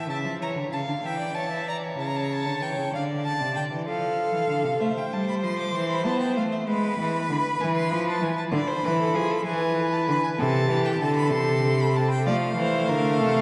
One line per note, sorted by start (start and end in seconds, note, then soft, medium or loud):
0.08 0.25 C#3 medium
0.08 0.40 E5 medium
0.08 0.18 A5 medium
0.24 0.41 F3 medium
0.40 0.57 E3 medium
0.40 0.72 C#5 medium
0.40 0.50 A#5 medium
0.56 0.71 D3 medium
0.72 0.87 C#3 medium
0.72 1.07 F5 medium
0.72 0.81 A5 medium
0.88 0.94 D3 medium
1.03 1.97 E3 medium
1.03 1.19 E5 medium
1.03 1.36 G5 medium
1.20 1.36 D5 medium
1.35 1.51 C#5 medium
1.35 1.67 A5 medium
1.51 1.69 E5 medium
1.68 1.85 D5 medium
1.68 1.77 A#5 medium
1.84 2.93 C#5 medium
1.99 2.48 C#3 medium
1.99 2.08 A5 medium
2.07 2.18 A#5 medium
2.16 2.26 A5 medium
2.24 2.34 A#5 medium
2.33 2.65 A5 medium
2.46 2.63 D3 medium
2.61 2.77 E3 medium
2.61 2.94 G5 medium
2.78 2.84 C#3 medium
2.93 3.42 D3 medium
2.93 3.86 D5 medium
2.93 3.03 F5 medium
3.26 3.56 A5 medium
3.40 3.58 C3 medium
3.56 3.71 D3 medium
3.56 3.64 G5 medium
3.71 3.88 E3 medium
3.87 4.32 F3 medium
3.87 4.82 A4 medium
3.87 4.83 F5 medium
4.33 4.39 E3 medium
4.48 4.66 D3 medium
4.64 4.80 C3 medium
4.80 4.88 A3 loud
4.80 6.69 C5 medium
4.80 5.00 E5 medium
4.98 5.15 G5 medium
5.12 5.45 G3 medium
5.12 5.28 A5 medium
5.28 5.34 B5 medium
5.43 5.74 F3 medium
5.43 5.59 C6 medium
5.59 5.77 D6 medium
5.75 6.07 E3 loud
5.75 5.89 C6 medium
5.90 6.05 B5 medium
6.06 6.38 B3 loud
6.06 6.20 A5 medium
6.21 6.36 G5 medium
6.37 6.70 A3 medium
6.37 6.43 F5 medium
6.52 6.58 E5 medium
6.68 6.99 G#3 loud
6.68 8.53 B4 medium
6.68 7.62 B5 medium
6.99 7.29 E3 medium
7.29 7.38 D3 loud
7.60 7.93 E3 medium
7.60 7.74 G#5 medium
7.75 7.91 C6 medium
7.90 8.21 F3 loud
7.90 8.06 B5 medium
8.08 8.25 A5 medium
8.22 8.30 E3 medium
8.22 8.37 G#5 medium
8.37 8.44 A5 medium
8.52 8.60 D3 loud
8.52 8.69 D5 medium
8.52 9.45 B5 medium
8.68 8.85 C5 medium
8.84 9.16 E3 loud
8.84 8.99 B4 medium
8.99 9.17 A4 medium
9.14 9.45 F3 loud
9.14 9.33 G#4 medium
9.31 9.47 A4 medium
9.46 10.07 E3 loud
9.46 10.41 B4 medium
9.46 9.94 G#5 medium
9.93 10.09 A5 medium
10.08 10.16 D3 loud
10.08 10.23 B5 medium
10.23 10.30 G#5 medium
10.38 10.71 C3 loud
10.38 10.69 A4 medium
10.38 10.87 A5 medium
10.69 11.00 E3 loud
10.69 11.03 G4 medium
10.86 11.01 G5 medium
11.01 11.32 D3 loud
11.01 12.26 A4 loud
11.01 11.16 A5 medium
11.16 11.32 B5 medium
11.30 12.27 C3 loud
11.30 11.82 C6 medium
11.80 11.98 B5 medium
11.97 12.11 A5 medium
12.12 12.27 G5 medium
12.26 12.56 F3 loud
12.26 13.41 A3 loud
12.26 12.35 D5 loud
12.26 13.41 F5 loud
12.57 12.90 E3 medium
12.57 12.91 C5 loud
12.88 13.22 D3 medium
12.88 13.21 A#4 loud
13.21 13.41 C3 medium
13.21 13.41 A4 loud